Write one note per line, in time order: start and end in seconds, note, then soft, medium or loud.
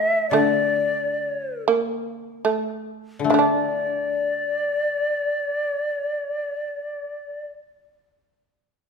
0.00 1.39 E3 soft
0.00 0.32 A3 soft
0.00 0.27 E5 medium
0.30 3.18 D3 soft
0.30 1.67 A3 soft
0.30 1.62 D5 medium
1.68 2.44 A#3 soft
2.45 3.30 A3 soft
3.19 7.47 D3 soft
3.24 7.52 A3 soft
3.30 7.54 D3 soft
3.30 7.57 D4 soft
3.30 7.46 D5 soft
3.34 7.57 A3 soft
3.39 7.62 D4 soft